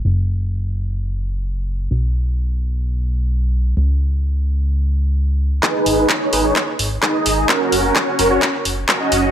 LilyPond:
<<
  \new Staff \with { instrumentName = "Supersaw synth" } { \time 4/4 \key gis \dorian \tempo 4 = 129 r1 | r1 | r1 | <dis' gis' b'>4 r8 <dis' gis' b'>16 <dis' gis' cis''>8 r8. <dis' gis' b'>16 <dis' gis' dis''>8. |
<cis' fis' ais'>4 <cis' fis' cis''>8 <cis' fis' ais'>16 <cis' fis' cis''>8 r8. <cis' fis' ais'>16 <cis' fis' dis''>8. | }
  \new Staff \with { instrumentName = "Analog synth bass" } { \clef bass \time 4/4 \key gis \dorian fis,,1 | b,,1 | cis,1 | r8 gis,,8 r8 gis,,8 r8 gis,,8 r8 gis,,8 |
r8 fis,,8 r8 fis,,8 r8 fis,,8 r8 fis,,8 | }
  \new DrumStaff \with { instrumentName = "Drums" } \drummode { \time 4/4 r4 r4 r4 r4 | r4 r4 r4 r4 | r4 r4 r4 r4 | <hc bd>8 hho8 <hc bd>8 hho8 <hc bd>8 hho8 <hc bd>8 hho8 |
<hc bd>8 hho8 <hc bd>8 hho8 <hc bd>8 hho8 <hc bd>8 hho8 | }
>>